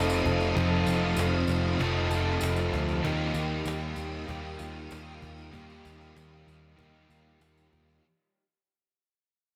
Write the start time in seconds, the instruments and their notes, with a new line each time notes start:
Already playing: picked electric bass F1, distorted electric guitar F2 C3 C4, overdriven electric guitar F3 C4 D#4 A4, clean electric guitar C4 D#4 A4, string machine A4 F5 D#6
0.10 tambourine
0.26 picked electric bass F1, clean electric guitar A4, cajon bass
0.40 tambourine
0.55 picked electric bass F1, distorted electric guitar F2 C3, overdriven electric guitar F3 C4 D#4, clean electric guitar C4, cajon bass
0.60 overdriven electric guitar A4
0.86 picked electric bass F1, clean electric guitar D#4, tambourine
1.17 picked electric bass F1, clean electric guitar C4, cajon slap, tambourine
1.36 cajon slap
1.47 picked electric bass F1, clean electric guitar C4, tambourine
1.78 picked electric bass F1, distorted electric guitar F2 C3, overdriven electric guitar F3 C4 D#4, clean electric guitar D#4, cajon bass, tambourine
1.82 overdriven electric guitar A4
2.10 picked electric bass F1, clean electric guitar A4, tambourine
2.41 picked electric bass F1, clean electric guitar D#4, cajon slap, tambourine
2.56 tambourine
2.73 picked electric bass D2, clean electric guitar A4, cajon bass
2.88 tambourine
3.02 picked electric bass D#2, overdriven electric guitar D#3 G3 A#3 D#4, clean electric guitar G3, string machine G4 F5 D#6, cajon bass
3.06 overdriven electric guitar G4
3.34 picked electric bass D#2, clean electric guitar A#3, tambourine
3.65 picked electric bass D#2, clean electric guitar G3, cajon slap, tambourine
3.96 picked electric bass D#2, clean electric guitar G3, tambourine
4.26 picked electric bass D#2, overdriven electric guitar D#3 G3 A#3 D#4, clean electric guitar A#3, cajon bass, tambourine
4.31 overdriven electric guitar G4
4.59 picked electric bass D#2, clean electric guitar F4, tambourine
4.90 picked electric bass D#2, clean electric guitar A#3, cajon slap, tambourine
5.22 picked electric bass D#2, clean electric guitar F4, cajon bass
5.38 tambourine
5.51 picked electric bass D#2, overdriven electric guitar D#3 G3 A#3 D#4 G4, clean electric guitar G3, cajon bass, tambourine
5.70 tambourine
5.84 picked electric bass D#2, clean electric guitar A#3, tambourine
6.01 tambourine
6.16 picked electric bass D#2, clean electric guitar G3, cajon slap, tambourine
6.47 picked electric bass D#2, clean electric guitar G3, tambourine
6.76 picked electric bass D#2, overdriven electric guitar D#3 G3 A#3 D#4, clean electric guitar A#3, cajon bass
6.81 overdriven electric guitar G4
7.09 picked electric bass D#2, clean electric guitar F4, tambourine
7.41 picked electric bass D#2, clean electric guitar A#3, cajon slap, tambourine
7.57 tambourine
7.72 picked electric bass D#2, clean electric guitar F4, cajon bass
7.89 tambourine